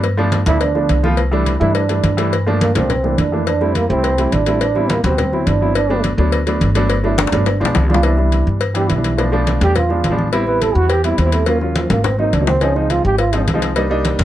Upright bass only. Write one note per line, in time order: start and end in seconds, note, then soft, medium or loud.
0.00 0.41 G2 medium
0.46 0.86 D2 medium
0.89 1.55 C2 medium
1.61 2.01 G2 loud
2.04 2.70 G2 medium
2.75 3.15 C2 loud
3.18 3.84 F2 medium
3.90 4.30 C2 loud
4.32 4.98 A1 medium
5.04 5.44 D2 loud
5.47 6.13 G1 medium
6.18 6.58 D2 loud
6.61 7.27 G1 loud
7.32 7.59 G1 loud
7.61 7.74 B1 medium
7.76 8.42 C2 loud
8.47 8.87 G2 loud
8.90 9.56 B1 medium
9.61 10.01 E2 loud
10.04 10.70 A1 medium
10.75 11.15 E2 loud
11.18 11.85 D#2 loud
11.90 12.30 G#1 loud
12.33 12.99 C#2 medium
13.05 13.45 G#1 loud
13.47 14.14 C2 medium
14.19 14.24 F2 loud